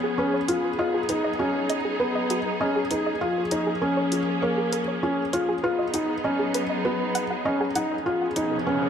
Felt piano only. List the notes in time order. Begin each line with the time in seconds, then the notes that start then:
0.18 C#4
0.48 F4
0.79 F4
1.09 D#4
1.39 C#4
2.00 B3
2.60 C#4
2.91 D#4
3.21 F4
3.51 D#4
3.82 C#4
4.42 A#3
5.03 C#4
5.33 F4
5.64 F4
5.94 D#4
6.24 C#4
6.85 B3
7.45 C#4
7.75 D#4
8.06 F4
8.36 D#4
8.67 C#4